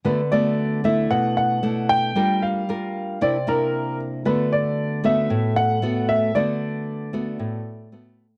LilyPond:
<<
  \new Staff \with { instrumentName = "Grand piano" } { \time 4/4 \key d \major \tempo 4 = 114 b'8 d''4 e''8 fis''8 fis''4 g''8~ | g''8 f''4. d''8 bes'4 r8 | b'8 d''4 e''4 fis''4 e''8 | d''2. r4 | }
  \new Staff \with { instrumentName = "Nylon-string guitar" } { \time 4/4 \key d \major << { <a b fis'>8 <a b fis'>4 <a d' e'>4. <a d' e'>4 | <d' f' bes'>4 <d' f' bes'>4 <bes d' e'>8 <bes d' e'>4. | <a b fis'>4. <a b fis'>4. <a b fis'>4 | <a b fis'>4. <a b fis'>4. <a b fis'>8 r8 | } \\ { d2 b,2 | g2 c2 | d2 a,2 | d2 a,2 | } >> }
>>